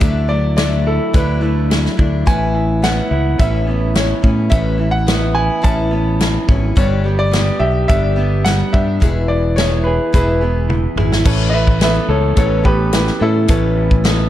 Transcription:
Already playing: E5
0.00 D2 D3 F#3 A3 D4 E4, kick, closed hi-hat
0.28 F#3 A3 D4 E4 D5
0.56 F#3 A3 D4 E4 D5, snare, closed hi-hat
0.86 E4 A4
1.13 D2 D3 F#3 A3 D4 E4 B4, kick, closed hi-hat
1.41 A3 D4 E4
1.70 F#3, snare, closed hi-hat
1.86 snare
1.97 D2 A3 D4 E4, kick
2.26 A1 A2 E3 B3 C#4 E4 G#5, kick, closed hi-hat
2.55 E3
2.82 E3 B3 C#4 F#5, snare, closed hi-hat
2.86 E4
3.11 C#2 E4
3.39 A1 A2 E3 B3 C#4 E4 E5, kick, closed hi-hat
3.67 B3 C#4 E4
3.71 B3
3.95 E3 C#5, snare, closed hi-hat
4.22 A2 B3 C#4 E4, kick
4.50 A1 A2 E3 B3 C#4 E4 E5, kick, closed hi-hat
4.78 E3 B3 C#4 E4
4.91 F#5
5.07 E3 B3 C#4 E4, snare, closed hi-hat
5.35 E4 G#5
5.62 A1 A2 E3 B3 C#4 E4 A5, kick, closed hi-hat
5.91 B3 C#4 E4
6.20 E3, snare, closed hi-hat
6.48 G#1 B3 C#4 E4, kick
6.76 G1 G2 D3 G3 B3 D4 G4 C#5, kick, closed hi-hat
7.04 G3 B3 D4 G4
7.19 D5
7.31 G3 B3 D4 G4, snare, closed hi-hat
7.59 B1 G4 E5
7.88 G1 G2 D3 G3 B3 D4 G4 E5, kick, closed hi-hat
8.16 G3 B3 D4 G4
8.45 G3 F#5, snare, closed hi-hat
8.73 G2 G3 B3 D4 G4 E5, kick
9.00 E1 E2 B2 E3 B3 E4 G#4, kick, closed hi-hat
9.28 E3 D5
9.56 E3 B3 E4 G#4 C#5, snare, closed hi-hat
9.84 G#4 B4
10.13 E1 E2 B2 E3 B3 E4 G#4 B4, kick, closed hi-hat
10.41 E3 B3 E4 G#4
10.69 E3, high tom
10.96 G#1 B3 E4 G#4, mid tom
11.00 E3
11.12 snare
11.24 A1 A2 E3 B3 C#4 A4 B4 C#5, kick, crash
11.50 E3 A4 D#5
11.54 B3 C#4 B4 E5
11.67 kick
11.80 E3 B3 C#4 A4 B4 E5, snare, closed hi-hat
12.08 C#2 A4 C#5
12.36 A1 A2 E3 B3 C#4 A4 C#5, kick, closed hi-hat
12.64 B3 C#4 G4 A4 B4, kick
12.93 E3 G4 B4, snare, closed hi-hat
13.07 snare
13.20 A2 B3 C#4 E4 A4
13.48 A1 A2 E3 B3 C#4 A4 B4 C#5, kick, closed hi-hat
13.77 E3
13.91 kick
14.04 E3 B3 C#4 A4, snare, closed hi-hat

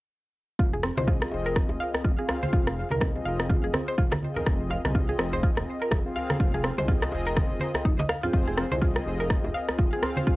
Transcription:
0.59 F1 F4, kick
0.73 G#4, djembe tone
0.83 C4, cross-stick
0.97 C2 C4 F4 G#4 C5 D#5, djembe slap, high conga
1.07 F4, kick, djembe tone, low conga
1.22 C4 F4 G#4 D#5, cross-stick
1.31 F1, djembe tone
1.46 A#4
1.56 kick, cross-stick
1.69 F1, djembe tone
1.80 F5
1.94 cross-stick, djembe tone
2.04 F1 F4, kick
2.19 C4 F4 G#4 F5
2.29 C4, cross-stick, djembe tone
2.43 C5, high conga
2.53 F1 F4, kick, djembe tone
2.67 cross-stick
2.90 C2 C4 F4 G#4 A#4 D#5, high conga, djembe tone
3.00 kick, cross-stick, low conga
3.15 C4 F4 G#4 D#5, djembe tone
3.25 F1 F5
3.40 cross-stick
3.49 F4, kick, high conga, djembe tone
3.64 F1 G#4
3.73 C4, cross-stick, djembe tone, high conga
3.88 C4 F4 G#4 C5 D#5
3.98 F1 F4, kick
4.12 cross-stick, djembe slap, djembe tone, high conga
4.22 C4 F4 G#4 D#5, high conga
4.36 A#4, djembe tone, low conga
4.46 F1, kick, cross-stick
4.70 F5, djembe tone
4.85 C2 C4 F4 G#4 D#5, cross-stick, djembe slap, high conga
4.94 F4, kick, djembe tone, low conga
5.09 C4 F4 G#4 D#5
5.19 F1 C4, cross-stick
5.33 C5, djembe tone
5.43 F4, kick
5.57 F1, cross-stick, djembe tone
5.82 A#4
5.91 F1, kick, cross-stick, djembe tone
6.06 C4 F4 G#4 F5
6.16 F5, djembe tone
6.30 cross-stick, high conga
6.40 F1 F4, kick
6.54 G#4, djembe tone
6.64 C4, cross-stick
6.78 C2 C4 F4 G#4 C5 D#5, djembe slap, djembe tone, high conga
6.88 F4, kick, low conga
7.02 C4 F4 G#4 D#5, cross-stick, djembe slap
7.12 F1, djembe tone
7.27 A#4
7.36 kick, cross-stick, djembe tone, high conga
7.51 F1
7.60 C5, high conga
7.74 C4 F4 G#4 D#5, cross-stick, djembe tone
7.85 F1 D#4, kick
7.99 D#5, djembe slap, high conga, djembe tone
8.09 F5, cross-stick, high conga
8.23 C4 F4 G#4 C5, low conga
8.33 F1 F4, kick
8.48 G#4, djembe tone
8.58 C4, cross-stick
8.71 C2 C4 F4 G#4 C5 D#5, djembe slap, high conga
8.82 F4, kick, djembe tone, low conga
8.96 C4 F4 G#4 D#5, cross-stick
9.06 F1, djembe tone
9.20 A#4
9.30 kick, cross-stick
9.44 F1, djembe tone
9.54 F5
9.68 cross-stick, djembe tone
9.79 F1 F4, kick
9.93 C4 F4 G#4 F5
10.02 C4, cross-stick, djembe tone
10.17 C5, high conga
10.27 F1 F4, kick, djembe tone

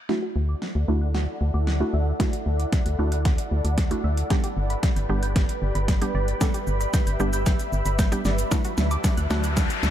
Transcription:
0.09 A3 D4 E4 F#4 A4 D5 F#5, snare
0.23 F#4
0.36 D2
0.49 D6
0.62 F#6, snare
0.75 D2 F#6
0.88 D2 A3 D4 E4 F#4 F#6
1.01 F#6
1.15 F#4, snare
1.41 D2
1.54 D2 D6
1.67 F#6, snare
1.80 A3 D4 E4 F#4 F#6
1.94 D2 E5
2.20 A3 D4 E4 F#4, kick, snare, closed hi-hat
2.33 F#4, closed hi-hat
2.46 D2
2.59 D6, closed hi-hat
2.72 F#6, kick, snare, closed hi-hat
2.86 D2 F#6, closed hi-hat
2.99 D2 A3 D4 E4 F#4 F#6
3.12 F#6, closed hi-hat
3.25 F#4, kick, snare, closed hi-hat
3.38 closed hi-hat
3.52 D2
3.65 D2 D6, closed hi-hat
3.78 F#6, kick, snare, closed hi-hat
3.91 A3 D4 E4 F#4 F#6, closed hi-hat
4.04 D2 E5
4.17 closed hi-hat
4.30 G3 B3 D4 G4 B4 B5, kick, snare, closed hi-hat
4.44 G4, closed hi-hat
4.57 G1
4.70 B5, closed hi-hat
4.83 G6, kick, snare, closed hi-hat
4.96 G1 G6, closed hi-hat
5.09 G1 G3 B3 D4 G4 G6
5.23 G6, closed hi-hat
5.36 G4, kick, snare, closed hi-hat
5.49 closed hi-hat
5.62 G1
5.75 G1 B5, closed hi-hat
5.88 G6, kick, snare, closed hi-hat
6.01 G3 B3 D4 G4 G6, closed hi-hat
6.15 G1 D5
6.28 closed hi-hat
6.41 G3 B3 D4 G4 A4 E5, kick, snare, closed hi-hat, shaker
6.54 G4, closed hi-hat, shaker
6.67 G1, shaker
6.81 B5, closed hi-hat, shaker
6.94 G6, kick, snare, closed hi-hat, shaker
7.07 G1 G6, closed hi-hat, shaker
7.20 G1 G3 B3 D4 G4 G6, shaker
7.33 G6, closed hi-hat, shaker
7.46 G4, kick, snare, closed hi-hat, shaker
7.59 closed hi-hat, shaker
7.73 G1, shaker
7.86 G1 B5, closed hi-hat, shaker
7.99 G6, kick, snare, closed hi-hat, shaker
8.12 G3 B3 D4 G4 G6, closed hi-hat, shaker
8.25 G1 D5, snare, shaker
8.38 closed hi-hat, shaker
8.51 F#3 A3 D4 E4 F#4 D5 E5 A5, kick, snare, closed hi-hat, riser, shaker
8.65 F#4, closed hi-hat, shaker
8.78 D2, snare, shaker
8.91 D6, closed hi-hat, shaker
9.04 F#6, kick, snare, closed hi-hat, shaker
9.17 D2 F#6, closed hi-hat, shaker
9.30 D2 F#3 A3 D4 F#4 F#6, snare, shaker
9.44 F#6, closed hi-hat, shaker
9.57 F#4, kick, snare, closed hi-hat, shaker
9.70 closed hi-hat, shaker
9.83 D2, snare, shaker

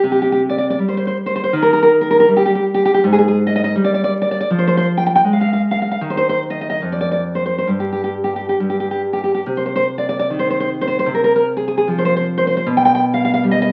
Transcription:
0.04 C3
0.12 G4
0.22 G4
0.32 G4
0.49 D5
0.58 D5
0.70 D5
0.79 G3
0.88 C5
0.97 C5
1.07 C5
1.26 C5
1.35 C5
1.44 C5
1.53 D#3
1.62 A#4
1.73 A#4
1.83 A#4
2.01 A#4
2.11 A#4
2.20 A#4
2.28 G3
2.37 G4
2.46 G4
2.55 G4
2.74 G4
2.85 G4
2.94 G4
3.04 G#2
3.13 G#4
3.19 G#4
3.28 G#4
3.47 D#5
3.56 D#5
3.64 D#5
3.75 G3
3.84 D5
3.94 D5
4.04 D5
4.22 D5
4.31 D5
4.41 D5
4.51 F3
4.59 C5
4.67 C5
4.77 C5
4.97 G5
5.06 G5
5.15 G5
5.25 G#3
5.33 F5
5.41 F5
5.53 F5
5.71 F5
5.82 F5
5.91 F5
6.01 D#3
6.10 C5
6.17 C5
6.29 C5
6.50 D#5
6.61 D#5
6.70 D#5
6.82 F2
6.92 D5
7.01 D5
7.12 D5
7.35 C5
7.46 C5
7.58 C5
7.67 G2
7.80 G4
7.93 G4
8.04 G4
8.24 G4
8.36 G4
8.49 G4
8.60 G2
8.70 G4
8.80 G4
8.91 G4
9.13 G4
9.24 G4
9.34 G4
9.46 C3
9.57 C5
9.66 C5
9.76 C5
9.98 D5
10.09 D5
10.19 D5
10.30 D#3
10.39 C5
10.50 C5
10.60 C5
10.81 C5
10.87 C5
10.99 C5
11.06 C3
11.14 A#4
11.24 A#4
11.36 A#4
11.57 G#4
11.68 G#4
11.78 G#4
11.88 F3
11.98 C5
12.05 C5
12.16 C5
12.38 C5
12.47 C5
12.57 C5
12.66 B2
12.77 G5
12.85 G5
12.95 G5
13.14 F5
13.25 F5
13.34 F5
13.43 G3
13.51 D#5
13.62 D#5

